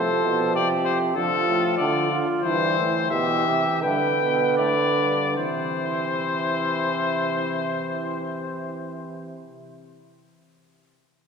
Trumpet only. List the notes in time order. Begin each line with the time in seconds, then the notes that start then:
Already playing: C5
0.55 D5
0.85 C5
1.17 A4
1.77 D5
2.42 C5
3.11 E5
3.83 G5
4.57 D5
5.37 C5